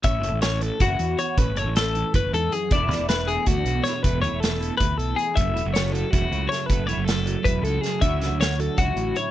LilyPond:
<<
  \new Staff \with { instrumentName = "Clean electric guitar" } { \time 7/8 \key a \major \tempo 4 = 158 e''4 cis''8 a'8 fis'4 cis''8 | b'8 cis''8 a'4 b'8 a'8 gis'8 | d''4 b'8 gis'8 fis'4 cis''8 | b'8 cis''8 a'4 b'8 a'8 gis'8 |
e''4 cis''8 a'8 fis'4 cis''8 | b'8 cis''8 a'4 b'8 a'8 gis'8 | e''4 cis''8 a'8 fis'4 cis''8 | }
  \new Staff \with { instrumentName = "Clean electric guitar" } { \time 7/8 \key a \major << { cis'8 a'4. e'4 fis'8 | cis'8 a'2. | <e a d' e'>8 e'4. d'4 e'16 fis'16 | a8 e'2. |
a8 e'16 fis'4~ fis'16 e'4 a'8 | a8 e'16 fis'4~ fis'16 e'4 a'8 | <fis cis' e' fis'>8 fis'4. e'4 e'8 | } \\ { a,4. e4 e,4 | a,4. e8 a,8 gis,8 fis,8 | e,4. e4 b,4 | e,4. e4. e,8 |
fis,4. fis4 cis4 | fis,4. fis4 cis4 | d4. fis4 a,4 | } >> }
  \new Staff \with { instrumentName = "Fingered electric bass" } { \clef bass \time 7/8 \key a \major a,,8 fis,,16 a,,4~ a,,16 fis,,8 e,8 r8 | a,,8 fis,,16 a,,4~ a,,16 fis,,8 e,8 r8 | e,,8 d,16 e,,4~ e,,16 d,8 b,,8 r8 | e,,8 d,16 e,,4~ e,,16 d,8 b,,8 r8 |
fis,,8 e,,16 fis,,4~ fis,,16 e,,8 cis,8 r8 | fis,,8 e,,16 fis,,4~ fis,,16 e,,8 cis,8 r8 | d,8 cis,16 d,4~ d,16 cis,8 a,,8 r8 | }
  \new DrumStaff \with { instrumentName = "Drums" } \drummode { \time 7/8 <hh bd>8 hh8 <hh sn>8 hh8 <hh bd>8 hh8 hh8 | <hh bd>8 hh8 <hh sn>8 hh8 <hh bd>8 hh8 hh8 | <hh bd>8 <hh sn>8 <hh sn>8 hh8 <hh bd>8 hh8 <hh sn>8 | <hh bd>8 hh8 <hh sn>8 hh8 <hh bd>8 hh8 hh8 |
<hh bd>8 hh8 <hh sn>8 hh8 <hh bd>8 hh8 <hh sn>8 | <hh bd>8 hh8 <hh sn>8 hh8 <hh bd>8 hh8 <hh sn>8 | <hh bd>8 <hh sn>8 <hh sn>8 hh8 <hh bd>8 hh8 hh8 | }
>>